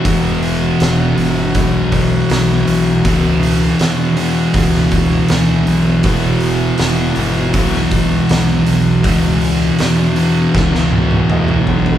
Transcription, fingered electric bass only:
0.05 E1
0.81 E1
1.17 G1
1.55 B1
2.30 B1
2.67 B1
3.05 C#2
3.79 E2
4.54 C#2
5.30 D2
5.67 B1
6.04 E1
6.80 E1
7.16 G1
7.54 B1
8.29 B1
8.67 B1
9.04 C#2
9.80 E2
10.55 C#2
11.29 D2
11.67 B1

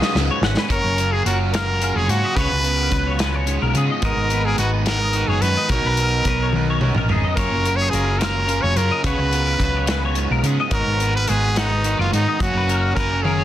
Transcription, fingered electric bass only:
0.15 C#2
0.41 G#1
0.70 F#1
0.84 F#1
1.25 F#1
1.95 F1
2.08 G#2
2.36 C#2
2.52 C#2
2.92 C#2
3.62 B1
3.75 C#3
4.03 G#1
4.16 G#1
4.58 G#1
5.28 F#1
5.41 F#2
5.69 B1
5.84 B1
6.25 B1
6.96 A#1
7.09 G#1
7.37 F#1
7.52 F#1
7.93 F#1
8.63 F1
8.76 F#2
9.04 C#2
9.18 C#2
9.59 C#2
10.30 B1
10.43 C#3
10.71 G#1
10.86 G#1
11.29 G#1
11.99 F#1
12.12 G#2
12.41 F#1
12.54 F#1
12.96 F#1

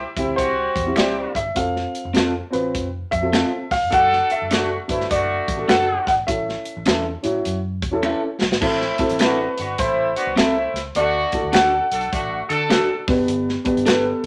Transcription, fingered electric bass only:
0.16 D2
0.38 C2
0.76 E2
0.96 C2
1.35 G1
1.56 F1
2.05 F1
2.54 A1
2.75 F1
3.12 F2
3.71 C2
3.83 F1
3.93 F#1
4.41 F#1
4.89 G1
5.11 F#1
5.48 A1
5.69 F#1
6.07 G#1
6.28 A1
6.77 A1
6.87 E2
7.25 A2
7.46 F#2
7.82 E2
8.42 B1
8.53 G#1
8.62 A1
9.11 A1
9.59 G1
9.79 A1
10.27 C2
10.38 C2
10.74 C#2
10.95 D2
11.44 D2
11.92 B1
12.13 A1
12.50 D3
13.08 G1
13.18 F#1
13.28 G1
13.76 G1

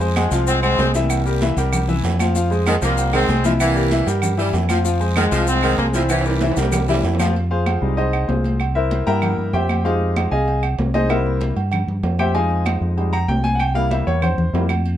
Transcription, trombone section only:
0.16 F3 G#3
0.47 G#3 C4
0.62 G#3 C4
0.95 G3 A#3
2.68 F3 G#3
2.84 G3 A#3
3.15 G#3 C4
3.46 F3 G#3
3.61 G3 A#3
5.17 F3 G#3
5.48 G#3 C4
5.78 F3 A#3
5.94 G3 C4

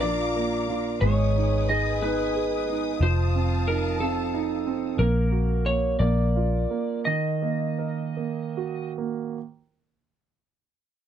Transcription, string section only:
Already playing: F5 A#5 D6
1.01 B4 G#5 D#6
3.00 F5 A5

